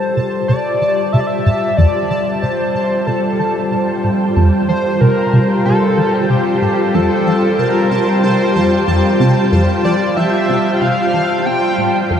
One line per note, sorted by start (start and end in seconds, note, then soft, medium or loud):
0.00 12.20 G3 medium
0.00 12.20 F4 medium
0.00 0.48 C5 loud
0.00 0.50 A5 medium
0.00 12.20 A5 medium
0.17 0.25 C3 medium
0.48 0.64 C3 medium
0.48 1.14 D5 loud
0.74 12.20 C5 medium
0.81 1.03 E3 medium
1.05 12.20 G5 medium
1.13 1.28 C3 medium
1.13 1.22 E5 loud
1.20 1.28 D5 medium
1.27 1.79 E5 loud
1.46 1.61 A2 medium
1.77 1.93 F2 loud
1.77 2.35 D5 loud
2.10 2.25 F3 medium
2.35 2.43 D5 medium
2.42 2.57 C3 medium
2.42 3.08 C5 loud
2.75 2.84 C3 medium
3.07 3.22 C3 medium
3.07 4.04 A4 medium
3.39 3.61 E3 medium
3.71 3.86 C3 medium
4.04 4.19 A2 medium
4.36 4.51 F2 loud
4.68 4.83 F3 medium
4.68 5.02 C5 loud
5.01 5.15 C3 medium
5.01 5.65 A#4 loud
5.33 5.42 C3 medium
5.65 5.80 C3 medium
5.65 6.32 A4 loud
5.97 6.20 E3 medium
6.30 6.44 C3 medium
6.30 6.96 G4 loud
6.62 6.77 A2 medium
6.94 7.09 F2 loud
6.94 7.61 A4 loud
7.26 7.41 F3 medium
7.59 7.73 C3 medium
7.59 8.24 A#4 loud
7.91 8.00 C3 medium
8.23 8.38 C3 medium
8.23 9.16 C5 loud
8.55 8.78 F2 medium
8.88 9.02 F2 medium
9.20 9.35 C3 medium
9.52 9.67 F2 loud
9.84 9.99 F3 medium
9.84 10.18 D5 medium
10.17 10.39 F3 medium
10.17 10.76 E5 loud
10.49 10.58 C3 medium
10.74 10.83 G5 medium
10.81 10.96 C3 medium
10.81 11.47 F5 loud
11.14 11.36 E3 medium
11.46 11.61 C3 medium
11.46 12.10 G5 loud
11.78 11.93 A2 medium
12.10 12.20 F2 loud